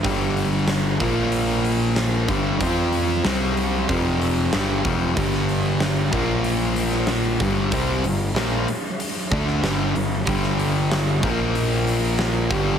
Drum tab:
HH |o-o-o-o-o-o-o-o-|o-o-o-o-o-o-o-o-|o-o-o-o-o-o-o-o-|o-o-o-o-o-o-o-o-|
SD |----o-------o---|----o-------o---|-o--o------oo---|----o------oo---|
BD |o-----o-------o-|o-------o-----o-|o-----o-------o-|o---------o-----|

HH |o-o-o-o-o-o-o-o-|
SD |-o--o-------o---|
BD |o-----o-------o-|